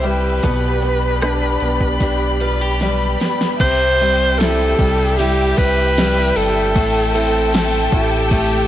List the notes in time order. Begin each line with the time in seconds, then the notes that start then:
Already playing: C2 C3 G3 C4 E4 G4 E5 G5
0.03 G3 B4, closed hi-hat
0.43 B1 B2 B3 B4 D5 B5, kick, closed hi-hat
0.82 B3 D4, closed hi-hat
1.02 closed hi-hat
1.21 D4, cross-stick, closed hi-hat
1.60 B1 B3, closed hi-hat
1.80 kick, closed hi-hat
2.00 B1 D4 G4, kick, closed hi-hat
2.40 B3 F4, closed hi-hat
2.61 G4
2.80 G3 D4 G4 B4, snare, closed hi-hat
3.20 B3, snare, closed hi-hat
3.41 snare
3.60 C2 C3 G4 C5 E5 G5, kick, crash, ride, tambourine
3.99 G3 C4, ride, tambourine
4.39 E4 A4, snare, ride, tambourine
4.79 C2 G3, kick, ride, tambourine
5.17 G3 E4 G4, ride
5.57 C2 B4, kick, ride, tambourine
5.96 G3 E4, snare, ride, tambourine
6.36 G1 A4, ride, tambourine
6.75 A1 A2 A3 A4, kick, ride, tambourine
7.14 C4 E4 A4, ride
7.53 A3 A4, snare, ride, tambourine
7.92 A1 E4 G4, kick, ride, tambourine
8.31 A3, kick, ride